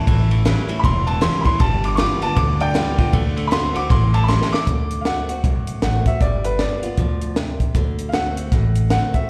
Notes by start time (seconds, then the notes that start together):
Already playing: A5
0.07 A1 A2 E3, kick, ride
0.31 A2 E3, ride
0.45 A2 E3 F#3 G3 C#4 E4, snare, ride
0.68 A2 E3 C#4 E4, muted upright bass stroke, ride
0.80 A2 B5
0.84 E1 E2 E3 C6, kick, ride
1.07 A2 E3 A5, ride
1.21 A2 E3 F#3 G3 C#4 E4 C6, snare, ride
1.41 E4 B5
1.45 A2 E3 C#4 C6, muted upright bass stroke, kick, ride
1.60 G1 G2 D3 G3 A5, kick, ride
1.83 G2 D3 D6, ride
1.95 G2 E3 G3 B3 C#6, snare, ride
1.99 F4 D6
2.22 G2 D3 B3 F4 A5, muted upright bass stroke, ride
2.36 D2 G2 D3 D6, kick, ride
2.60 G2 D3 D5 G5, ride
2.74 G2 E3 G3 B3 F4, snare, ride
2.98 G2 D3 B3 F4, muted upright bass stroke, kick, ride
3.13 D2 D3 A3, kick, ride
3.36 D3 A3, ride
3.47 D3 B5
3.52 A3 B3 C4 F#4 C6, snare, ride
3.75 D3 A3 C4 F#4 D6, muted upright bass stroke, ride
3.89 A1 A2 E3 C6, kick, snare, ride
4.13 A2 E3 A5, ride
4.24 B5
4.28 A2 E3 F#3 G3 C#4 E4 C6, snare
4.42 snare
4.52 A2 E3 C#4 E4 D6, muted upright bass stroke, snare
4.67 D2 D3, kick, closed hi-hat
4.91 closed hi-hat
5.01 D3 F5
5.05 A3 C4 F#4 F#5, snare, closed hi-hat
5.29 C4 F#4, muted upright bass stroke, closed hi-hat
5.44 B1 A2, kick, closed hi-hat
5.67 muted upright bass stroke, closed hi-hat
5.82 A1 D3 A3 C4 F#4 F#5, snare, closed hi-hat
6.06 C4 F#4 E5, kick, closed hi-hat
6.21 G1 G3 D5, kick, closed hi-hat
6.44 B4, closed hi-hat
6.59 G3 B3 F4 D5, snare, closed hi-hat
6.83 B3 F4, muted upright bass stroke, closed hi-hat
6.98 D2 F3, kick, closed hi-hat
7.22 closed hi-hat
7.36 C3, snare, closed hi-hat
7.60 muted upright bass stroke, kick, closed hi-hat
7.75 D2 D3, kick, closed hi-hat
7.99 closed hi-hat
8.09 D3 F5
8.14 A3 C4 F#4 F#5, snare, closed hi-hat
8.37 muted upright bass stroke, closed hi-hat
8.52 A1 A2, kick, snare, closed hi-hat
8.76 closed hi-hat
8.90 D3 A3 C4 F#4 F#5, snare, closed hi-hat
9.13 C4 F#4 E5, muted upright bass stroke, kick, closed hi-hat